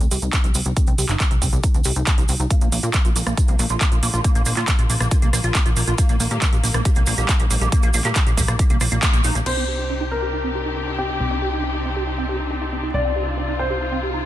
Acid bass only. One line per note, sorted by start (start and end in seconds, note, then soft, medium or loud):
0.00 0.08 C4 loud
0.11 0.19 G4 medium
0.22 0.33 D#4 medium
0.44 0.49 D#4 medium
0.55 0.59 C4 medium
0.66 0.73 D#4 medium
0.77 0.87 C4 medium
0.88 0.95 C4 loud
0.98 1.06 G4 medium
1.09 1.20 D#4 medium
1.31 1.36 D#4 medium
1.42 1.46 C4 medium
1.53 1.60 G4 medium
1.64 1.68 D#4 medium
1.74 1.82 C4 loud
1.85 1.93 G4 medium
1.96 2.07 D#4 medium
2.07 2.12 D4 medium
2.18 2.22 D#4 medium
2.29 2.33 C4 medium
2.40 2.47 D#4 medium
2.51 2.61 A#3 medium
2.61 2.69 A#3 loud
2.72 2.80 A#3 medium
2.83 2.93 F4 medium
2.94 2.99 D4 medium
3.05 3.09 F4 medium
3.16 3.20 A#3 medium
3.27 3.34 A#3 medium
3.37 3.42 F4 medium
3.48 3.56 A#3 loud
3.59 3.67 A#3 medium
3.70 3.80 F4 medium
3.81 3.86 D4 medium
3.92 3.96 F4 medium
4.03 4.07 A#3 medium
4.14 4.21 F4 medium
4.24 4.35 A#3 medium
4.35 4.43 A#3 loud
4.46 4.54 A#3 medium
4.57 4.67 F4 medium
4.68 4.73 D4 medium
4.79 4.83 F4 medium
4.90 4.94 A#3 medium
5.01 5.08 A#3 medium
5.11 5.16 F4 medium
5.22 5.30 A#3 loud
5.33 5.41 A#3 medium
5.44 5.54 F4 medium
5.55 5.59 D4 medium
5.66 5.70 F4 medium
5.77 5.81 A#3 medium
5.87 5.95 F4 medium
5.98 6.09 A#3 medium
6.09 6.17 A#3 loud
6.20 6.28 A#3 medium
6.31 6.41 G4 medium
6.42 6.46 D#4 medium
6.53 6.57 G4 medium
6.63 6.68 A#3 medium
6.74 6.82 A#3 medium
6.85 6.90 G4 medium
6.96 7.04 A#3 loud
7.07 7.15 A#3 medium
7.18 7.28 G4 medium
7.29 7.33 D#4 medium
7.40 7.44 G4 medium
7.51 7.55 A#3 medium
7.61 7.69 G4 medium
7.72 7.83 A#3 medium
7.83 7.91 A#3 loud
7.94 8.02 A#3 medium
8.05 8.15 G4 medium
8.16 8.20 D#4 medium
8.27 8.31 G4 medium
8.38 8.42 A#3 medium
8.48 8.56 A#3 medium
8.59 8.64 G4 medium
8.70 8.78 A#3 loud
8.81 8.86 A#3 loud
8.92 9.02 A#3 medium
9.03 9.13 A#3 medium
9.14 9.21 A#3 loud
9.24 9.35 D#4 loud
9.35 9.40 A#3 medium
9.46 9.57 C4 medium
9.57 9.65 C4 loud
9.68 9.76 G4 medium
9.79 9.89 D#4 medium
9.90 9.94 D4 medium
10.01 10.05 D#4 medium
10.11 10.16 C4 medium
10.22 10.30 G4 medium
10.33 10.38 D#4 medium
10.44 10.52 C4 loud
10.55 10.62 G4 medium
10.66 10.76 D#4 medium
10.77 10.81 D4 medium
10.88 10.92 D#4 medium
10.98 11.03 C4 medium
11.09 11.17 D#4 medium
11.20 11.30 C4 medium
11.31 11.39 C4 medium
11.42 11.49 G4 medium
11.53 11.63 D#4 medium
11.64 11.68 D4 medium
11.74 11.79 D#4 medium
11.85 11.90 C4 medium
11.96 12.04 G4 medium
12.07 12.12 D#4 medium
12.18 12.26 C4 medium
12.29 12.36 G4 medium
12.40 12.50 D#4 medium
12.51 12.55 D4 medium
12.61 12.66 D#4 medium
12.72 12.77 C4 medium
12.83 12.91 D#4 medium
12.94 13.04 C4 medium
13.05 13.12 C4 medium
13.16 13.23 G4 medium
13.27 13.37 D#4 medium
13.38 13.42 D4 medium
13.48 13.53 D#4 medium
13.59 13.64 C4 medium
13.70 13.78 G4 medium
13.81 13.86 D#4 medium
13.92 13.99 C4 loud
14.03 14.10 G4 medium
14.14 14.24 D#4 medium